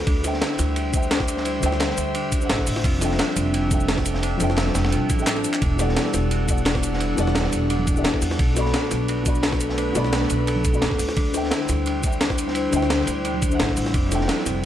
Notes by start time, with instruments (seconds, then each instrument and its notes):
Already playing: analog synth pad G3 C5 E5, harp F#4 A4 F#5
0.07 upright bass D2, harp D4, kick, closed hi-hat, ride
0.21 grand piano D3 D4 C5, snare, closed hi-hat, ride, cabasa
0.26 grand piano E5 G5
0.33 snare
0.41 harp E4, snare, closed hi-hat, ride
0.52 snare
0.59 upright bass D2, snare, closed hi-hat, ride, cabasa
0.76 harp G4, closed hi-hat, ride
0.90 grand piano D3 D4 C5, kick, closed hi-hat, ride, cabasa
0.95 grand piano E5 G5
1.03 cabasa
1.11 harp D4, snare, closed hi-hat, ride
1.20 kick, snare
1.28 closed hi-hat, ride, cabasa
1.37 snare
1.45 harp E4, closed hi-hat, ride
1.59 upright bass D2, grand piano D3 D4 C5, snare, closed hi-hat, ride, cabasa
1.64 grand piano E5 G5
1.72 snare
1.80 harp G4, snare, closed hi-hat, ride
1.90 snare
1.98 upright bass D2, closed hi-hat, ride, cabasa
2.15 harp D4, closed hi-hat, ride
2.32 kick, closed hi-hat, ride, cabasa
2.38 grand piano D3 D4 C5, cabasa
2.43 grand piano E5 F#5
2.49 upright bass A1, harp E4, snare, closed hi-hat, ride
2.59 kick, snare
2.67 upright bass A1, closed hi-hat, open hi-hat, cabasa
2.76 snare
2.84 upright bass F1, analog synth pad D4 A4, harp F4, kick, closed hi-hat, ride
2.98 grand piano F3 C4 D4 A4, snare, closed hi-hat, ride, cabasa
3.04 grand piano E5 G5
3.11 snare
3.19 harp D4, snare, closed hi-hat, ride
3.28 snare
3.36 upright bass F1, closed hi-hat, ride, cabasa
3.53 harp E4, closed hi-hat, ride
3.68 grand piano F3 C4 D4 A4, kick, closed hi-hat, ride, cabasa
3.73 grand piano E5 G5
3.81 cabasa
3.88 harp F4, snare, closed hi-hat, ride
3.97 kick, snare
4.05 closed hi-hat, ride, cabasa
4.14 snare
4.23 harp D4, closed hi-hat, ride
4.37 upright bass F1, grand piano F3 C4 D4 A4, snare, closed hi-hat, ride, cabasa
4.43 grand piano E5 G5
4.50 snare
4.56 harp E4, snare, closed hi-hat, ride
4.66 snare
4.75 upright bass F1, snare, closed hi-hat, ride, cabasa
4.84 snare, ride
4.92 upright bass C2, harp F4, closed hi-hat
5.09 upright bass A1, harp E4, kick, closed hi-hat, ride, cabasa
5.16 grand piano F3 C4 D4, cabasa
5.20 grand piano A4 E5 G5
5.27 harp D4, snare, clap, closed hi-hat, ride
5.36 ride
5.44 closed hi-hat, cabasa
5.54 clap, ride
5.62 upright bass E1, harp D4, analog synth pad F#5, kick, closed hi-hat, ride
5.76 grand piano E3 B3 G4, snare, closed hi-hat, cabasa
5.80 grand piano A4 D5 F#5, ride
5.89 snare
5.96 harp E4, snare, closed hi-hat, ride
6.06 snare
6.13 upright bass E1, snare, closed hi-hat, ride, cabasa
6.31 harp F#4, closed hi-hat, ride
6.45 grand piano E3 G3 B3, kick, closed hi-hat, cabasa
6.49 grand piano A4 D5 F#5, ride
6.58 cabasa
6.65 harp D4, snare, closed hi-hat, ride
6.75 kick, snare
6.83 closed hi-hat, ride, cabasa
6.93 snare
7.00 harp E4, closed hi-hat, ride
7.14 upright bass E1, grand piano E3 G3 B3, snare, closed hi-hat, ride, cabasa
7.18 grand piano A4 D5 F#5
7.27 snare
7.35 harp F#4, snare, closed hi-hat, ride
7.45 snare
7.52 upright bass E1, closed hi-hat, ride, cabasa
7.70 harp D4, closed hi-hat, ride
7.79 high conga
7.87 kick, closed hi-hat, ride, cabasa
7.93 grand piano E3 B3 G4 A4, cabasa
7.99 grand piano D5 E5
8.04 upright bass E2, harp E4, snare, closed hi-hat, ride
8.14 kick, snare
8.22 upright bass E2, closed hi-hat, open hi-hat, cabasa
8.31 snare
8.39 upright bass B1, analog synth pad A3 B4, harp A4, kick, closed hi-hat, ride
8.54 grand piano B3 F#4 A4, snare, closed hi-hat, ride, cabasa
8.58 grand piano D5 B5
8.65 snare
8.73 harp D4, snare, closed hi-hat, ride
8.83 snare
8.91 upright bass B1, snare, closed hi-hat, ride, cabasa
9.08 harp F#4, closed hi-hat, ride
9.23 grand piano B3 F#4 A4, kick, closed hi-hat, ride, cabasa
9.28 grand piano D5 B5
9.35 cabasa
9.43 harp A4, snare, closed hi-hat, ride
9.52 kick, snare
9.61 closed hi-hat, ride, cabasa
9.69 snare
9.78 harp D4, closed hi-hat, ride
9.92 upright bass B1, grand piano B3 F#4 A4, snare, closed hi-hat, ride, cabasa
9.97 grand piano D5 B5
10.04 snare
10.13 harp F#4, snare, closed hi-hat, ride
10.22 snare
10.30 upright bass B1, closed hi-hat, ride, cabasa
10.47 harp A4, closed hi-hat, ride
10.56 high conga
10.65 kick, closed hi-hat, ride, cabasa
10.72 grand piano B3 F#4 A4 D5 B5, cabasa
10.82 upright bass F#1, harp D4, snare, closed hi-hat, ride
10.91 kick, snare
10.99 upright bass D2, analog synth pad G3 E4 C5, closed hi-hat, open hi-hat, cabasa
11.08 snare
11.17 upright bass D2, harp D4, kick, closed hi-hat, ride
11.31 grand piano D3 D4 C5, snare, closed hi-hat, cabasa
11.35 grand piano E5 G5, ride
11.44 snare
11.51 harp E4, snare, closed hi-hat, ride
11.61 snare
11.69 upright bass D2, snare, closed hi-hat, ride, cabasa
11.86 harp D4, closed hi-hat, ride
12.00 grand piano D3 D4 C5, kick, closed hi-hat, ride, cabasa
12.05 grand piano E5 G5
12.13 cabasa
12.20 harp D4, snare, closed hi-hat, ride
12.30 kick, snare
12.38 closed hi-hat, ride, cabasa
12.48 snare
12.55 harp E4, closed hi-hat, ride
12.70 upright bass D2, grand piano D3 D4 C5, snare, closed hi-hat, ride, cabasa
12.75 grand piano E5 G5
12.82 snare
12.90 harp D4, snare, closed hi-hat, ride
12.99 snare
13.07 upright bass D2, closed hi-hat, ride, cabasa
13.25 harp D4, closed hi-hat, ride
13.34 high conga
13.42 kick, closed hi-hat, ride, cabasa
13.48 grand piano D3 D4 C5, cabasa
13.53 grand piano E5 F#5
13.59 upright bass A1, harp E4, snare, closed hi-hat, ride
13.69 kick, snare
13.76 upright bass A1, closed hi-hat, open hi-hat, cabasa
13.86 snare
13.94 upright bass F1, harp D4, analog synth pad D4 A4, kick, closed hi-hat, ride
14.08 grand piano F3 C4 D4 A4, snare, closed hi-hat, ride, cabasa
14.14 grand piano E5 G5
14.21 snare
14.28 harp D4, snare, closed hi-hat, ride
14.38 snare
14.46 upright bass F1, snare, closed hi-hat, ride, cabasa